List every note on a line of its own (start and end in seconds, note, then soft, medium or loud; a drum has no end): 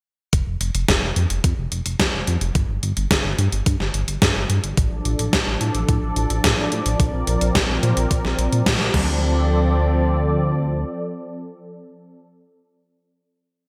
0.33 0.43 F1 loud
0.33 kick loud
0.33 closed hi-hat medium
0.47 0.57 F1 medium
0.61 0.71 F1 medium
0.61 closed hi-hat medium
0.75 0.85 F1 medium
0.75 closed hi-hat medium
0.88 0.98 F1 loud
0.88 kick loud
0.88 snare loud
0.88 closed hi-hat medium
1.03 1.12 F1 medium
1.16 1.26 F2 medium
1.16 closed hi-hat medium
1.30 1.40 F1 medium
1.30 closed hi-hat medium
1.44 1.54 F2 medium
1.44 kick loud
1.44 closed hi-hat medium
1.58 1.68 F1 medium
1.72 1.82 F1 medium
1.72 closed hi-hat medium
1.86 1.96 F1 medium
1.86 closed hi-hat medium
2.00 2.09 F2 loud
2.00 kick loud
2.00 snare loud
2.00 closed hi-hat medium
2.14 2.23 F1 medium
2.27 2.37 F2 medium
2.27 closed hi-hat medium
2.41 2.51 F1 medium
2.41 closed hi-hat medium
2.55 2.65 G1 loud
2.55 kick loud
2.55 closed hi-hat medium
2.69 2.79 G1 medium
2.83 2.93 G1 medium
2.83 closed hi-hat medium
2.97 3.07 G1 medium
2.97 closed hi-hat medium
3.11 3.21 G1 loud
3.11 kick loud
3.11 snare loud
3.11 closed hi-hat medium
3.25 3.34 G1 medium
3.38 3.48 G2 medium
3.38 closed hi-hat medium
3.52 3.62 G1 medium
3.52 closed hi-hat medium
3.66 3.76 G2 loud
3.66 kick loud
3.66 closed hi-hat medium
3.80 3.90 G1 medium
3.80 snare soft
3.94 4.04 G1 medium
3.94 closed hi-hat medium
4.08 4.18 G1 medium
4.08 closed hi-hat medium
4.22 4.32 G2 loud
4.22 kick loud
4.22 snare loud
4.22 closed hi-hat medium
4.36 4.46 G1 medium
4.50 4.59 G2 medium
4.50 closed hi-hat medium
4.64 4.73 G1 medium
4.64 closed hi-hat medium
4.77 4.87 A1 loud
4.77 8.90 F3 medium
4.77 6.97 D4 medium
4.77 6.97 A4 medium
4.77 8.90 D5 medium
4.77 kick loud
4.77 closed hi-hat medium
4.91 5.01 A1 medium
5.05 5.15 A1 medium
5.05 closed hi-hat medium
5.19 5.29 A1 medium
5.19 closed hi-hat medium
5.33 5.43 A1 loud
5.33 kick loud
5.33 snare loud
5.33 closed hi-hat medium
5.47 5.57 A1 medium
5.61 5.71 A2 medium
5.61 closed hi-hat medium
5.75 5.84 A1 medium
5.75 closed hi-hat medium
5.89 5.98 A2 loud
5.89 kick loud
5.89 closed hi-hat medium
6.03 6.12 A1 medium
6.16 6.26 A1 medium
6.16 closed hi-hat medium
6.30 6.40 A1 medium
6.30 closed hi-hat medium
6.44 6.54 A2 loud
6.44 kick loud
6.44 snare loud
6.44 closed hi-hat medium
6.58 6.68 A1 medium
6.72 6.82 A2 medium
6.72 closed hi-hat medium
6.86 6.96 A1 medium
6.86 closed hi-hat medium
7.00 7.09 A#1 loud
7.00 8.92 C4 medium
7.00 8.92 A#4 medium
7.00 kick loud
7.00 closed hi-hat medium
7.14 7.23 A#1 medium
7.27 7.37 A#1 loud
7.27 closed hi-hat medium
7.41 7.51 A#1 medium
7.41 closed hi-hat medium
7.55 7.65 A#1 loud
7.55 kick loud
7.55 snare loud
7.55 closed hi-hat medium
7.69 7.79 A#1 medium
7.83 7.93 A#2 medium
7.83 closed hi-hat medium
7.97 8.07 A#1 medium
7.97 closed hi-hat medium
8.11 8.21 A#1 loud
8.11 kick loud
8.11 closed hi-hat medium
8.25 8.34 A#1 medium
8.25 snare soft
8.39 8.48 A#1 medium
8.39 closed hi-hat medium
8.53 8.62 A#2 medium
8.53 closed hi-hat medium
8.66 8.76 A#2 loud
8.66 kick loud
8.66 snare loud
8.66 closed hi-hat medium
8.80 8.90 A#1 medium
8.94 10.85 D2 medium
8.94 12.20 F3 medium
8.94 12.20 C4 medium
8.94 12.20 A4 medium
8.94 12.20 D5 medium
8.94 kick loud
8.94 crash medium